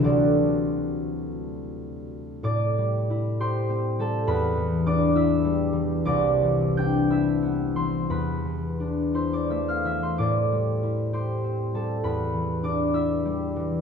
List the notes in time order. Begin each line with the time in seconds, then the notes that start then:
Already playing: A3 D4 E4 E5 A5
0.00 D2 D3 E3 F#3 C4
0.04 F#4 A4 D5
2.43 A2 D5 D6
2.78 G3
3.10 E4
3.40 G4 C5 C6
3.70 C4
3.99 G3 A4 A5
4.27 E2 B4 B5
4.57 E3
4.86 D4 D5 D6
5.15 E4 E5 E6
5.44 G3
5.73 E3
6.05 C2 D5 D6
6.42 E3
6.77 D4 G5 G6
7.10 E4 E5 E6
7.43 B3
7.75 E3 C5 C6
8.10 E2 B4 B5
8.45 E3
8.80 D4
9.14 E4 C5 C6
9.33 D5 D6
9.49 A3 E5 E6
9.68 F5 F6
9.85 E3 E5 E6
10.03 C5 C6
10.18 A2 D5 D6
10.52 G3
10.83 E4
11.13 G4 C5 C6
11.44 C4
11.74 G3 A4 A5
12.04 E2 B4 B5
12.34 E3
12.63 D4 D5 D6
12.94 E4 E5 E6
13.25 G3
13.56 E3